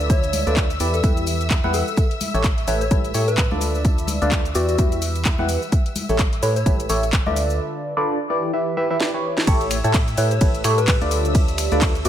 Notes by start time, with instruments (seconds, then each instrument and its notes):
Already playing: fm bass D2, fm electric piano D3 F4 A4 B4 D5, string section E5 E6
0.01 tambourine
0.10 soft synth lead C#5, kick, closed hi-hat, tambourine, cabasa
0.22 closed hi-hat, tambourine, cabasa
0.33 open hi-hat, tambourine, high conga, cabasa
0.47 fm bass D2, fm electric piano D3 F4 A4 B4 D5, closed hi-hat, tambourine, cabasa
0.57 kick, clap, closed hi-hat, tambourine, cabasa
0.70 closed hi-hat, tambourine, cabasa
0.80 fm bass E2, fm electric piano E3 E4 G4 B4 D5, open hi-hat, tambourine, cabasa
0.93 soft synth lead A4, closed hi-hat, tambourine, cabasa
1.03 fm bass E2, fm electric piano E3 E4 G4 B4 E5, kick, closed hi-hat, tambourine, high conga, cabasa
1.17 closed hi-hat, tambourine, cabasa
1.26 open hi-hat, tambourine, cabasa
1.41 closed hi-hat, tambourine, cabasa
1.50 kick, clap, closed hi-hat, tambourine, cabasa
1.64 fm bass E2, fm electric piano E3 E4 G4 B4 F#5, tambourine, high conga
1.73 soft synth lead A4, open hi-hat, tambourine, cabasa
1.88 tambourine, cabasa
1.97 kick, closed hi-hat, tambourine, cabasa
2.11 closed hi-hat, tambourine
2.21 open hi-hat, tambourine, high conga, cabasa
2.34 fm bass A1, fm electric piano A3 E4 G4 A4 C#5, closed hi-hat, tambourine, cabasa
2.44 kick, clap, closed hi-hat, tambourine, cabasa
2.58 closed hi-hat, tambourine
2.67 fm bass A1, fm electric piano A3 E4 G4 A4 B4, soft synth lead C#5, open hi-hat, tambourine, cabasa
2.81 soft synth lead C#5, closed hi-hat, tambourine, cabasa
2.91 fm bass A1, fm electric piano A3 E4 G4 A4 B4, kick, closed hi-hat, tambourine, high conga, cabasa
3.05 closed hi-hat, tambourine, cabasa
3.14 fm bass A2, fm electric piano A3 E4 G4 A4 C#5, open hi-hat, tambourine, cabasa
3.28 soft synth lead B4, closed hi-hat, tambourine, cabasa
3.37 kick, clap, closed hi-hat, tambourine, cabasa
3.51 fm bass D2, fm electric piano D3 F4 A4 B4 D5, tambourine, high conga
3.61 open hi-hat, tambourine, cabasa
3.75 tambourine, cabasa
3.85 kick, closed hi-hat, tambourine, cabasa
3.98 closed hi-hat, tambourine, cabasa
4.07 open hi-hat, tambourine, high conga, cabasa
4.22 fm bass D2, fm electric piano D3 F4 A4 B4 D5, closed hi-hat, tambourine, cabasa
4.32 kick, clap, closed hi-hat, cabasa
4.45 closed hi-hat, tambourine, cabasa
4.55 fm bass E2, fm electric piano E3 E4 G4 B4 D5, soft synth lead F#4, open hi-hat, tambourine, cabasa
4.68 soft synth lead F#4, closed hi-hat, tambourine, cabasa
4.78 fm bass E2, fm electric piano E3 E4 G4 B4 E5, kick, closed hi-hat, tambourine, high conga, cabasa
4.92 closed hi-hat, tambourine, cabasa
5.02 open hi-hat, tambourine, cabasa
5.16 closed hi-hat, tambourine, cabasa
5.25 kick, clap, closed hi-hat, tambourine, cabasa
5.38 fm bass E2, fm electric piano E3 E4 G4 B4 F#5, tambourine, high conga
5.48 open hi-hat, tambourine, cabasa
5.62 tambourine, cabasa
5.72 kick, closed hi-hat, tambourine, cabasa
5.86 closed hi-hat, tambourine
5.95 open hi-hat, tambourine, high conga, cabasa
6.09 fm bass A1, fm electric piano A3 E4 G4 A4 C#5, closed hi-hat, tambourine, cabasa
6.19 kick, clap, closed hi-hat, tambourine, cabasa
6.33 closed hi-hat, tambourine
6.42 fm bass A2, fm electric piano A3 E4 G4 A4 B4, soft synth lead C#5, open hi-hat, tambourine, cabasa
6.56 soft synth lead C#5, closed hi-hat, tambourine, cabasa
6.66 fm bass A1, fm electric piano A3 E4 G4 A4 B4, kick, closed hi-hat, tambourine, high conga, cabasa
6.80 closed hi-hat, tambourine, cabasa
6.89 fm bass A1, fm electric piano A3 E4 G4 A4 C#5, open hi-hat, tambourine, cabasa
7.03 closed hi-hat, tambourine, cabasa
7.13 kick, clap, closed hi-hat, cabasa
7.26 fm bass D2, fm electric piano D3 F4 A4 B4 D5, soft synth lead E5, tambourine, high conga
7.36 open hi-hat, tambourine, cabasa
7.49 tambourine, cabasa
7.97 fm electric piano D3 F4 A4 B4 D5
8.30 fm electric piano E3 E4 G4 B4 D5
8.53 fm electric piano E3 E4 G4 B4 E5
8.77 fm electric piano E3 E4 G4 B4 E5
8.90 fm electric piano E3 E4 G4 B4 E5
9.00 fm electric piano E3 E4 G4 B4 D5, snare
9.14 fm electric piano E3 E4 G4 B4 C#5
9.37 snare
9.47 fm bass A1, fm electric piano A3 E4 G4 A4 C#5, ambient pad G4, string section E5 E6, kick, closed hi-hat, ride, cabasa
9.61 closed hi-hat, cabasa
9.71 finger snap, open hi-hat, cabasa
9.84 fm bass A2, fm electric piano A3 E4 G4 A4 C#5, closed hi-hat, cabasa
9.90 ambient pad A5, kick, clap, closed hi-hat, ride, cabasa
10.08 closed hi-hat, cabasa
10.17 fm bass A2, fm electric piano A3 E4 G4 A4 B4, soft synth lead C#5, open hi-hat, cabasa
10.31 soft synth lead C#5, closed hi-hat, cabasa
10.41 fm bass A1, fm electric piano A3 E4 G4 A4 B4, kick, closed hi-hat, ride, cabasa
10.55 closed hi-hat, cabasa
10.64 fm bass A2, fm electric piano A3 E4 G4 A4 C#5, finger snap, open hi-hat, cabasa
10.78 soft synth lead B4, closed hi-hat, cabasa
10.88 kick, clap, closed hi-hat, ride, cabasa
11.01 fm bass D2, fm electric piano D3 F4 A4 B4 D5, closed hi-hat, cabasa
11.11 open hi-hat, cabasa
11.25 closed hi-hat, cabasa
11.35 kick, closed hi-hat, ride, cabasa
11.48 closed hi-hat, cabasa
11.54 ambient pad D5, finger snap, open hi-hat, cabasa
11.72 fm bass D2, fm electric piano D3 F4 A4 B4 D5, closed hi-hat, cabasa
11.82 kick, clap, closed hi-hat, ride, cabasa
11.95 closed hi-hat, cabasa
12.05 fm bass E2, fm electric piano E3 E4 G4 B4 D5, soft synth lead F#4, open hi-hat, cabasa